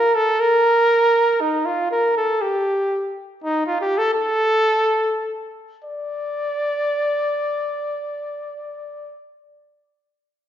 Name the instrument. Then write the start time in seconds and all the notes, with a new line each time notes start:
trumpet
Already playing: A#4
0.15 A4
0.40 A#4
1.41 D#4
1.66 F4
1.92 A#4
2.17 A4
2.42 G4
3.42 D#4
3.67 F4
3.81 G4
3.98 A4
4.14 A4
5.85 D5